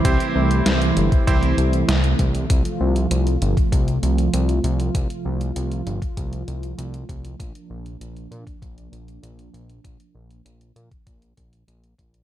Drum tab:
HH |xx-xxxxxxxxxxxxx|xx-xxxxxxxxxxxxx|xx-xxxxxxxxxxxxx|xx-xxxxxxxxxxxxx|
SD |----o-------o---|----------------|----------------|----------------|
BD |o------oo-----o-|o------oo-------|o------oo-----o-|o------oo-------|

HH |xx-xxxxxxxxxxxxx|
SD |----------------|
BD |o------oo-o---o-|